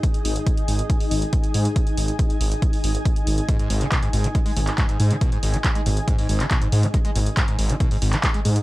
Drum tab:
HH |xxoxxxoxxooxxxox|xxoxxxoxxooxxxox|xxoxxxoxxooxxxox|xxoxxxoxxooxxxox|
CP |----------------|----------------|----x------xx---|----x------xx---|
BD |o---o---o---o---|o---o---o---o---|o---o---o---o---|o---o---o---o---|

HH |xxoxxxoxxooxxxox|
CP |----x------xx---|
BD |o---o---o---o---|